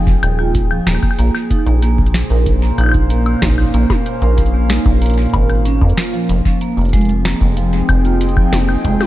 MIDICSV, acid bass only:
0, 0, Header, 1, 2, 480
1, 0, Start_track
1, 0, Tempo, 638298
1, 893, Time_signature, 4, 2, 24, 8
1, 6819, End_track
2, 0, Start_track
2, 0, Title_t, "Acid bass"
2, 0, Program_c, 0, 38
2, 0, Note_on_c, 0, 29, 100
2, 126, Note_off_c, 0, 29, 0
2, 173, Note_on_c, 0, 27, 90
2, 606, Note_off_c, 0, 27, 0
2, 652, Note_on_c, 0, 27, 93
2, 743, Note_off_c, 0, 27, 0
2, 892, Note_on_c, 0, 34, 100
2, 983, Note_off_c, 0, 34, 0
2, 1252, Note_on_c, 0, 34, 97
2, 1686, Note_off_c, 0, 34, 0
2, 1732, Note_on_c, 0, 34, 101
2, 2046, Note_off_c, 0, 34, 0
2, 2092, Note_on_c, 0, 34, 82
2, 2526, Note_off_c, 0, 34, 0
2, 2572, Note_on_c, 0, 34, 92
2, 2755, Note_off_c, 0, 34, 0
2, 2812, Note_on_c, 0, 34, 102
2, 2904, Note_off_c, 0, 34, 0
2, 3173, Note_on_c, 0, 34, 98
2, 3606, Note_off_c, 0, 34, 0
2, 3652, Note_on_c, 0, 34, 104
2, 3966, Note_off_c, 0, 34, 0
2, 4013, Note_on_c, 0, 32, 91
2, 4368, Note_off_c, 0, 32, 0
2, 4373, Note_on_c, 0, 41, 102
2, 4464, Note_off_c, 0, 41, 0
2, 4733, Note_on_c, 0, 29, 104
2, 4824, Note_off_c, 0, 29, 0
2, 5093, Note_on_c, 0, 29, 100
2, 5526, Note_off_c, 0, 29, 0
2, 5573, Note_on_c, 0, 29, 101
2, 5886, Note_off_c, 0, 29, 0
2, 5933, Note_on_c, 0, 29, 84
2, 6366, Note_off_c, 0, 29, 0
2, 6413, Note_on_c, 0, 29, 92
2, 6595, Note_off_c, 0, 29, 0
2, 6652, Note_on_c, 0, 29, 99
2, 6744, Note_off_c, 0, 29, 0
2, 6819, End_track
0, 0, End_of_file